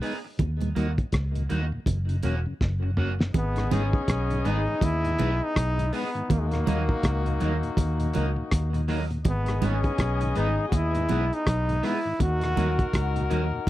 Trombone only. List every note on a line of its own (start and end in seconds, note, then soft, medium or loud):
3.37 3.75 B3 medium
3.73 4.49 C#4 loud
4.47 4.86 D#4 loud
4.84 5.45 E4 loud
5.44 5.94 D#4 loud
5.96 6.34 B3 medium
6.33 6.42 A#3 medium
6.40 6.51 G#3 medium
6.50 7.42 A#3 medium
9.29 9.67 B3 medium
9.65 10.37 C#4 medium
10.38 10.66 D#4 loud
10.69 10.76 F#4 medium
10.75 11.36 E4 loud
11.34 11.87 D#4 loud
11.85 12.21 E4 loud
12.22 13.28 F#4 loud